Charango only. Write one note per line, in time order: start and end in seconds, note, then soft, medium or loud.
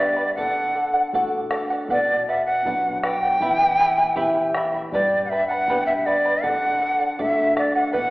0.00 0.17 B4 medium
0.00 0.16 D5 medium
0.00 0.18 G5 soft
0.00 0.15 B5 medium
0.17 0.37 B4 soft
0.17 0.37 D5 soft
0.17 0.36 B5 soft
0.37 0.74 A4 medium
0.37 0.74 D5 medium
0.37 0.75 F#5 medium
0.75 0.94 A4 soft
0.75 0.94 D5 soft
0.75 0.92 F#5 medium
0.94 1.13 D5 soft
0.94 1.13 F#5 soft
1.14 1.50 A4 medium
1.14 1.51 D5 medium
1.14 1.51 F#5 medium
1.51 1.70 A4 medium
1.51 1.71 D5 medium
1.51 1.69 F#5 medium
1.70 1.89 D5 soft
1.70 1.89 F#5 soft
1.90 2.27 B4 medium
1.90 2.28 D5 medium
1.90 2.28 F#5 medium
2.28 2.47 B4 soft
2.28 2.47 D5 soft
2.28 2.46 F#5 medium
2.47 2.66 D5 soft
2.47 2.66 F#5 soft
2.66 3.02 B4 medium
2.66 3.04 D5 medium
2.66 3.04 F#5 medium
3.04 3.22 B4 soft
3.04 3.23 D5 medium
3.04 3.22 F#5 medium
3.23 3.41 D5 soft
3.23 3.41 F#5 soft
3.41 3.79 E4 medium
3.41 3.79 G4 medium
3.41 3.79 E5 medium
3.41 3.78 G5 medium
3.41 3.79 B5 medium
3.79 3.98 E4 soft
3.79 3.97 E5 medium
3.79 3.98 G5 soft
3.79 3.97 B5 medium
3.98 4.15 E4 soft
3.98 4.16 E5 soft
3.98 4.16 B5 soft
4.16 4.54 E4 medium
4.16 4.54 G4 medium
4.16 4.55 E5 medium
4.16 4.54 G5 medium
4.16 4.55 B5 medium
4.55 4.74 E4 medium
4.55 4.74 E5 medium
4.55 4.74 G5 medium
4.55 4.73 B5 medium
4.74 4.94 E4 soft
4.74 4.93 E5 soft
4.74 4.93 B5 soft
4.94 5.31 G4 medium
4.94 5.30 B4 medium
4.94 5.31 D5 medium
4.94 5.30 G5 medium
4.94 5.32 B5 medium
5.31 5.50 B4 medium
5.31 5.50 D5 medium
5.31 5.50 G5 soft
5.31 5.50 B5 medium
5.51 5.68 B4 soft
5.51 5.69 D5 soft
5.51 5.69 B5 soft
5.69 6.06 G4 medium
5.69 6.05 B4 medium
5.69 6.06 D5 medium
5.69 6.05 G5 medium
5.69 6.07 B5 medium
6.06 6.25 B4 medium
6.06 6.25 D5 medium
6.06 6.25 G5 medium
6.06 6.24 B5 medium
6.26 6.45 B4 soft
6.26 6.42 D5 soft
6.26 6.43 B5 soft
6.43 6.80 A4 medium
6.43 6.81 D5 medium
6.43 6.81 F#5 medium
6.81 7.00 A4 soft
6.81 7.00 D5 soft
6.81 6.99 F#5 medium
7.00 7.18 D5 soft
7.00 7.19 F#5 soft
7.19 7.55 A4 medium
7.19 7.55 D5 medium
7.19 7.56 F#5 medium
7.56 7.75 A4 soft
7.56 7.76 D5 medium
7.56 7.74 F#5 medium
7.75 7.92 D5 soft
7.75 7.93 F#5 soft
7.93 8.10 B4 medium
7.93 8.10 D5 medium
7.93 8.10 F#5 medium